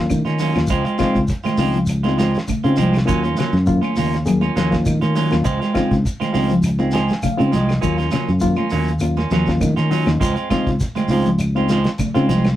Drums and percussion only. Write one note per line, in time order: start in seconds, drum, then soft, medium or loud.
0.10 kick medium
0.10 closed hi-hat medium
0.10 high conga medium
0.10 claves medium
0.10 shekere medium
0.25 snare soft
0.25 closed hi-hat soft
0.25 shekere soft
0.39 open hi-hat medium
0.39 low conga medium
0.39 shekere medium
0.55 snare medium
0.55 closed hi-hat soft
0.55 claves medium
0.55 shekere soft
0.67 kick loud
0.67 closed hi-hat medium
0.67 shekere medium
0.84 closed hi-hat soft
0.84 shekere soft
0.98 kick medium
0.98 snare medium
0.98 closed hi-hat medium
0.98 high conga medium
0.98 low conga medium
0.98 claves medium
0.98 shekere medium
1.15 kick medium
1.15 closed hi-hat soft
1.15 shekere soft
1.28 kick medium
1.28 snare soft
1.28 closed hi-hat medium
1.28 high conga soft
1.28 shekere medium
1.44 snare soft
1.44 closed hi-hat soft
1.44 high conga medium
1.44 claves medium
1.44 shekere soft
1.57 open hi-hat medium
1.57 low conga medium
1.57 shekere medium
1.73 closed hi-hat soft
1.73 shekere soft
1.86 closed hi-hat medium
1.86 high conga soft
1.86 claves medium
1.86 shekere medium
2.04 snare soft
2.04 high conga medium
2.04 shekere soft
2.19 snare medium
2.19 closed hi-hat medium
2.19 shekere medium
2.34 snare medium
2.34 closed hi-hat soft
2.34 shekere soft
2.48 kick medium
2.48 closed hi-hat medium
2.48 high conga medium
2.48 claves medium
2.48 shekere medium
2.64 closed hi-hat soft
2.64 shekere soft
2.77 closed hi-hat medium
2.77 low conga medium
2.77 shekere medium
2.94 snare medium
2.94 closed hi-hat soft
2.94 claves medium
2.94 shekere soft
3.08 kick medium
3.08 closed hi-hat medium
3.08 shekere medium
3.23 closed hi-hat soft
3.23 shekere soft
3.37 snare medium
3.37 closed hi-hat soft
3.37 high conga medium
3.37 claves medium
3.37 shekere medium
3.52 snare soft
3.52 shekere soft
3.66 kick medium
3.66 closed hi-hat medium
3.66 shekere medium
3.82 high conga medium
3.82 claves medium
3.82 shekere soft
3.96 open hi-hat medium
3.96 high conga medium
3.96 low conga medium
3.96 shekere medium
4.14 snare soft
4.14 closed hi-hat soft
4.14 shekere soft
4.26 closed hi-hat medium
4.26 high conga soft
4.26 claves medium
4.26 shekere medium
4.41 high conga medium
4.41 shekere soft
4.57 snare medium
4.57 closed hi-hat medium
4.57 shekere medium
4.72 kick medium
4.72 snare medium
4.72 closed hi-hat soft
4.72 shekere soft
4.85 kick medium
4.85 closed hi-hat medium
4.85 high conga medium
4.85 claves medium
4.85 shekere medium
5.02 snare soft
5.02 closed hi-hat soft
5.02 high conga medium
5.02 shekere soft
5.15 snare soft
5.15 open hi-hat medium
5.15 low conga medium
5.15 shekere medium
5.31 snare medium
5.31 closed hi-hat soft
5.31 claves medium
5.31 shekere soft
5.44 kick medium
5.44 closed hi-hat medium
5.44 shekere medium
5.62 snare soft
5.62 closed hi-hat soft
5.62 shekere soft
5.75 kick medium
5.75 snare medium
5.75 closed hi-hat medium
5.75 high conga medium
5.75 low conga medium
5.75 claves medium
5.75 shekere medium
5.91 kick medium
5.91 snare soft
5.91 closed hi-hat soft
5.91 shekere soft
6.05 kick medium
6.05 closed hi-hat medium
6.05 high conga soft
6.05 shekere medium
6.20 snare soft
6.20 closed hi-hat soft
6.20 high conga medium
6.20 claves medium
6.20 shekere soft
6.34 open hi-hat medium
6.34 low conga medium
6.34 shekere medium
6.49 closed hi-hat soft
6.49 shekere soft
6.63 closed hi-hat medium
6.63 high conga soft
6.63 claves medium
6.63 shekere medium
6.79 high conga medium
6.79 shekere soft
6.91 closed hi-hat soft
6.91 shekere medium
6.96 snare medium
7.09 snare medium
7.09 closed hi-hat soft
7.09 shekere soft
7.22 kick medium
7.22 closed hi-hat medium
7.22 high conga medium
7.22 low conga medium
7.22 claves medium
7.22 shekere medium
7.38 closed hi-hat soft
7.38 high conga medium
7.38 shekere soft
7.52 snare soft
7.52 closed hi-hat soft
7.52 low conga medium
7.52 shekere medium
7.69 snare medium
7.69 closed hi-hat soft
7.69 claves medium
7.69 shekere soft
7.83 kick loud
7.83 closed hi-hat medium
7.83 high conga soft
7.83 shekere medium
7.98 snare soft
7.98 closed hi-hat soft
7.98 shekere soft
8.11 snare medium
8.11 closed hi-hat soft
8.11 high conga medium
8.11 low conga medium
8.11 claves medium
8.11 shekere medium
8.28 shekere soft
8.40 kick medium
8.40 closed hi-hat medium
8.40 high conga soft
8.40 shekere medium
8.56 high conga medium
8.56 claves medium
8.56 shekere soft
8.70 open hi-hat medium
8.70 low conga medium
8.70 shekere medium
8.87 closed hi-hat soft
8.87 shekere soft
8.99 closed hi-hat medium
8.99 high conga soft
8.99 claves medium
8.99 shekere medium
9.17 snare soft
9.17 high conga medium
9.17 shekere soft
9.31 snare medium
9.31 closed hi-hat soft
9.31 shekere medium
9.46 kick medium
9.46 snare medium
9.46 closed hi-hat soft
9.46 shekere soft
9.60 kick medium
9.60 closed hi-hat medium
9.60 high conga medium
9.60 low conga medium
9.60 claves medium
9.60 shekere medium
9.77 snare soft
9.77 closed hi-hat soft
9.77 shekere soft
9.90 open hi-hat medium
9.90 low conga medium
9.90 shekere medium
10.06 snare medium
10.06 closed hi-hat soft
10.06 claves medium
10.06 shekere soft
10.20 kick loud
10.20 closed hi-hat medium
10.20 high conga soft
10.20 shekere medium
10.36 closed hi-hat soft
10.36 shekere soft
10.51 kick medium
10.51 snare medium
10.51 closed hi-hat soft
10.51 high conga medium
10.51 claves medium
10.51 shekere medium
10.67 kick medium
10.67 snare soft
10.67 closed hi-hat soft
10.67 shekere soft
10.80 kick medium
10.80 snare soft
10.80 closed hi-hat medium
10.80 high conga soft
10.80 shekere medium
10.95 snare soft
10.95 closed hi-hat soft
10.95 high conga medium
10.95 claves medium
10.95 shekere soft
11.08 open hi-hat medium
11.08 high conga medium
11.08 low conga medium
11.08 shekere medium
11.25 closed hi-hat soft
11.25 shekere soft
11.39 closed hi-hat medium
11.39 high conga soft
11.39 claves medium
11.39 shekere medium
11.56 high conga medium
11.56 shekere soft
11.69 snare medium
11.69 closed hi-hat medium
11.69 shekere medium
11.84 snare medium
11.84 closed hi-hat soft
11.84 shekere soft
11.98 kick medium
11.98 closed hi-hat medium
11.98 high conga medium
11.98 low conga medium
11.98 claves medium
11.98 shekere medium
12.15 snare soft
12.15 closed hi-hat soft
12.15 high conga medium
12.15 shekere soft
12.29 closed hi-hat medium
12.29 low conga medium
12.29 shekere medium
12.44 snare medium
12.44 closed hi-hat soft
12.44 claves medium
12.44 shekere soft